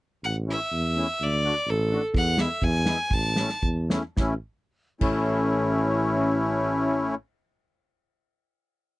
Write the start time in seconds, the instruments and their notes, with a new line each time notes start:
0.24 tuba A1, fiddle F#5
0.47 accordion A3 C#4 E4, fiddle E5
0.72 tuba E2
0.95 accordion A3 C#4 E4
1.20 tuba D2, fiddle D5
1.43 accordion A3 D4 F#4
1.67 tuba A1, fiddle A4
1.90 accordion A3 D4 F#4
2.14 tuba E2, fiddle F#5, kick
2.37 accordion G#3 B3 E4, fiddle E5, snare
2.62 tuba E2, fiddle G#5, kick
2.85 accordion G#3 B3 E4, snare
3.11 tuba A1, fiddle A5, kick
3.36 accordion A3 C#4 E4, snare
3.49 snare
3.62 tuba E2, kick
3.90 accordion A3 C#4 E4, snare
4.17 tuba A1, accordion A3 C#4 E4, kick, snare
5.00 tuba A1, accordion A3 C#4 E4, kick, crash